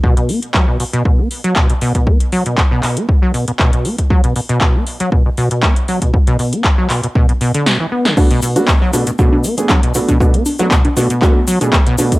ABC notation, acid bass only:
X:1
M:4/4
L:1/16
Q:"Swing 16ths" 1/4=118
K:Bm
V:1 name="Acid bass" clef=bass
B,, B,, B, z F, B,, B,, B,, B,, B, z F, B,, B,, B,, B,, | B, z F, B,, B,, B,, B,, B, z F, B,, B,, B,, B,, B, z | F, B,, B,, B,, B,, B, z F, B,, B,, B,, B,, B, z F, B,, | B,, B,, B,, B, z F, B,, B,, B,, B,, B,, D, B,, E, B, D, |
B,, B,, B,, B, z F, B,, B,, B,, B,, B, z F, B,, B,, B,, | B,, B, z F, B,, B,, B,, B,, B, z F, B,, B,, B,, B,, B, |]